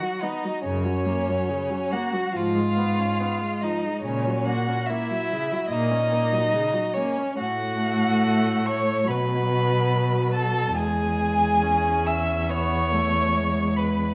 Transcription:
0.00 0.24 F#3 medium
0.00 0.25 F#4 medium
0.00 0.23 F#5 medium
0.22 0.47 B3 medium
0.22 0.63 D#4 medium
0.22 0.63 D#5 medium
0.45 0.65 F#3 soft
0.63 1.36 F#2 medium
0.63 0.87 C#3 medium
0.63 1.94 C#4 medium
0.63 1.93 C#5 medium
0.85 1.07 F#3 medium
1.06 1.30 A#3 medium
1.28 1.51 F#3 medium
1.50 1.72 C#3 medium
1.70 1.94 F#3 medium
1.91 2.15 A#3 medium
1.91 2.38 F#4 medium
1.91 2.34 F#5 medium
2.13 2.33 F#3 medium
2.32 3.05 G#2 medium
2.32 2.57 F3 medium
2.32 3.63 F5 medium
2.36 3.65 F4 medium
2.55 2.79 G#3 medium
2.77 3.00 B3 medium
2.99 3.22 C#4 medium
3.20 3.43 B3 medium
3.41 3.65 G#3 medium
3.61 3.86 F3 medium
3.61 4.04 D#4 medium
3.61 4.01 D#5 medium
3.85 4.05 G#3 medium
4.02 4.74 A#2 medium
4.02 4.29 C#3 medium
4.02 4.46 C#5 medium
4.06 4.49 C#4 medium
4.27 4.48 F#3 medium
4.45 4.69 A#3 medium
4.45 4.91 F#4 medium
4.45 4.88 F#5 medium
4.68 4.92 C#4 medium
4.87 5.13 A#3 medium
4.87 5.74 E4 medium
4.87 5.68 E5 loud
5.11 5.34 F#3 medium
5.32 5.54 C#3 medium
5.52 5.71 F#3 medium
5.69 6.37 A#2 medium
5.69 5.93 A#3 medium
5.69 6.95 D#4 medium
5.69 6.96 D#5 loud
5.91 6.14 C#4 medium
6.12 6.34 A#3 medium
6.32 6.54 F#3 medium
6.53 6.76 C#3 medium
6.74 6.99 F#3 medium
6.94 7.20 A#3 medium
6.94 7.39 C#4 medium
6.94 7.38 C#5 medium
7.19 7.39 C#4 medium
7.38 9.10 A2 medium
7.38 9.03 A3 medium
7.38 8.64 F#4 medium
7.38 8.68 F#5 loud
8.66 9.12 C#5 medium
8.66 9.09 C#6 medium
9.07 10.74 B2 medium
9.07 10.72 F#3 medium
9.07 10.33 B5 medium
9.11 10.36 B4 medium
10.34 10.76 A4 medium
10.34 10.78 A5 medium
10.75 14.14 E2 medium
10.75 11.64 G#3 medium
10.75 12.09 G#4 medium
10.75 12.08 G#5 loud
11.62 12.51 C#4 medium
12.07 12.52 E5 medium
12.07 12.51 E6 medium
12.49 12.95 B3 medium
12.49 13.80 C#5 medium
12.49 13.78 C#6 loud
12.93 13.36 A3 medium
13.35 14.14 G#3 medium
13.77 14.14 B4 medium
13.77 14.14 B5 medium

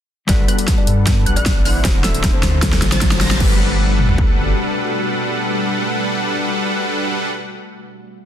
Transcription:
0.27 0.47 G1 medium
0.27 1.80 G3 medium
0.27 0.46 G3 medium
0.27 3.37 A3 medium
0.27 0.46 D4 medium
0.27 0.40 D4 medium
0.27 1.81 F#4 medium
0.27 0.46 A4 medium
0.27 1.81 A4 medium
0.27 0.46 B4 medium
0.27 0.40 D5 medium
0.27 0.46 F#5 medium
0.27 0.46 F#6 medium
0.27 kick medium
0.27 snare soft
0.27 closed hi-hat medium
0.27 riser medium
0.31 1.82 B4 loud
0.48 1.24 G3 medium
0.48 0.65 B3 medium
0.48 1.24 D4 medium
0.48 1.24 A4 medium
0.48 1.24 B4 medium
0.48 0.65 B4 medium
0.48 1.24 F#5 medium
0.48 1.24 F#6 medium
0.48 closed hi-hat medium
0.59 closed hi-hat medium
0.68 kick medium
0.68 snare soft
0.68 closed hi-hat medium
0.78 0.94 D4 medium
0.78 0.94 D5 medium
0.87 1.25 G2 loud
0.87 closed hi-hat medium
1.07 1.23 B3 medium
1.07 1.23 B4 medium
1.07 kick medium
1.07 snare medium
1.07 closed hi-hat medium
1.26 1.36 B1 medium
1.26 1.34 G3 medium
1.26 1.34 D4 medium
1.26 1.34 A4 medium
1.26 1.34 B4 medium
1.26 1.34 F#5 medium
1.26 1.34 F#6 medium
1.26 closed hi-hat medium
1.36 1.84 A1 medium
1.36 1.63 G3 medium
1.36 1.77 D4 medium
1.36 1.63 D4 medium
1.36 1.63 A4 medium
1.36 1.63 B4 medium
1.36 1.77 D5 medium
1.36 1.63 F#5 medium
1.36 1.63 F#6 medium
1.36 closed hi-hat medium
1.46 kick medium
1.46 snare medium
1.46 closed hi-hat medium
1.65 2.02 D3 medium
1.65 2.02 D4 medium
1.65 2.02 E4 medium
1.65 2.02 C5 medium
1.65 2.02 F#5 medium
1.65 2.02 F#6 medium
1.65 open hi-hat medium
1.83 2.33 D1 medium
1.83 2.38 D3 medium
1.83 1.96 C4 medium
1.83 2.39 D4 medium
1.83 2.40 F#4 medium
1.83 1.96 C5 medium
1.83 2.40 C5 medium
1.83 kick loud
1.83 snare medium
1.83 closed hi-hat medium
2.04 2.42 D3 medium
2.04 2.20 A3 medium
2.04 2.42 D4 medium
2.04 2.42 E4 medium
2.04 2.20 A4 medium
2.04 2.42 C5 medium
2.04 2.42 E5 medium
2.04 2.42 E6 medium
2.04 snare medium
2.04 closed hi-hat medium
2.15 closed hi-hat medium
2.24 kick medium
2.24 snare medium
2.24 closed hi-hat medium
2.33 2.50 C4 medium
2.33 2.49 C5 medium
2.41 2.81 D2 loud
2.41 3.36 D3 medium
2.41 3.36 A3 medium
2.41 3.37 F4 medium
2.41 3.38 C5 medium
2.41 snare medium
2.41 closed hi-hat medium
2.63 2.79 A3 medium
2.63 2.79 A4 loud
2.63 kick loud
2.63 snare medium
2.63 closed hi-hat medium
2.73 snare medium
2.82 3.39 A1 medium
2.82 snare medium
2.82 closed hi-hat medium
2.92 3.19 D3 medium
2.92 3.33 C4 medium
2.92 3.19 D4 medium
2.92 3.19 F4 medium
2.92 3.33 C5 loud
2.92 3.19 C5 medium
2.92 3.19 A5 medium
2.92 3.19 A6 loud
2.92 snare medium
2.92 closed hi-hat medium
3.01 kick medium
3.01 snare loud
3.01 closed hi-hat medium
3.12 snare medium
3.21 3.29 D3 medium
3.21 3.29 D4 medium
3.21 3.29 F4 medium
3.21 3.29 C5 medium
3.21 3.29 A#5 medium
3.21 3.29 A#6 medium
3.21 snare loud
3.21 open hi-hat medium
3.31 3.38 D3 medium
3.31 3.38 D4 medium
3.31 3.38 F4 medium
3.31 3.38 C5 medium
3.31 3.38 A5 medium
3.31 3.38 A6 medium
3.31 snare loud
3.38 4.53 G1 medium
3.38 7.28 B2 medium
3.38 7.35 G3 medium
3.38 7.28 G3 medium
3.38 7.28 A3 medium
3.38 7.28 D4 medium
3.38 3.41 F#4 medium
3.38 7.28 F#4 medium
3.38 7.28 A4 medium
3.38 7.38 B4 medium
3.38 7.28 B4 medium
3.38 7.28 F#5 medium
3.38 7.38 F#6 loud
3.38 kick loud
3.38 crash medium
3.42 7.39 A4 medium
3.42 7.41 B4 medium
3.99 mid tom medium
4.09 floor tom medium
4.18 kick medium

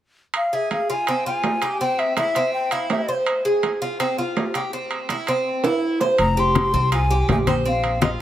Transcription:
0.34 0.56 F5 medium
0.34 high timbale medium
0.53 0.88 G#4 medium
0.53 0.72 E5 medium
0.71 0.89 F5 medium
0.71 high timbale medium
0.71 low timbale soft
0.90 1.07 F4 medium
0.90 1.24 G#5 medium
1.07 1.26 C4 medium
1.07 high timbale medium
1.26 1.61 F4 medium
1.26 1.77 G#5 medium
1.44 high timbale medium
1.44 low timbale medium
1.62 1.80 G4 medium
1.62 high timbale medium
1.81 2.16 C4 medium
1.81 2.01 G5 medium
1.99 2.16 E5 medium
1.99 high timbale medium
2.17 2.35 E4 medium
2.17 2.51 E5 medium
2.17 high timbale medium
2.17 low timbale medium
2.35 2.71 C4 medium
2.35 high timbale medium
2.53 2.74 G5 medium
2.71 3.07 E4 medium
2.71 2.90 F5 medium
2.71 high timbale medium
2.90 3.16 E5 medium
2.90 high timbale medium
2.90 low timbale medium
3.08 3.44 C5 medium
3.26 high timbale medium
3.45 3.80 G#4 medium
3.63 high timbale medium
3.63 low timbale medium
3.82 3.99 F4 medium
4.00 4.18 C4 medium
4.00 high timbale medium
4.18 4.54 F4 medium
4.37 high timbale medium
4.37 low timbale medium
4.54 4.73 G4 medium
4.54 high timbale medium
4.73 5.09 C4 medium
4.91 high timbale medium
5.09 5.27 E4 medium
5.09 high timbale medium
5.09 low timbale soft
5.27 5.64 C4 medium
5.27 high timbale medium
5.64 6.00 E4 medium
5.64 high timbale medium
6.01 6.19 C5 medium
6.01 low timbale medium
6.18 6.70 F1 medium
6.18 6.41 A#5 loud
6.18 high conga soft
6.18 high timbale medium
6.37 6.73 G4 medium
6.37 6.93 C6 loud
6.37 high conga soft
6.55 high conga medium
6.55 high timbale medium
6.55 low timbale medium
6.73 7.25 C2 medium
6.73 6.92 C4 medium
6.73 high conga soft
6.92 7.10 F4 medium
6.92 7.27 G#5 medium
6.92 high conga soft
6.92 high timbale medium
7.10 7.46 G4 medium
7.10 high conga soft
7.28 8.14 A#1 medium
7.28 7.38 G#5 medium
7.28 high conga medium
7.28 high timbale medium
7.28 low timbale medium
7.47 7.65 C5 medium
7.47 7.55 G5 medium
7.47 high conga medium
7.47 high timbale medium
7.65 8.01 C4 medium
7.65 8.01 F5 medium
7.65 high conga soft
7.84 high conga soft
7.84 high timbale medium
8.02 8.19 F4 medium
8.02 8.10 D#5 medium
8.02 high conga medium
8.02 high timbale medium
8.02 low timbale medium

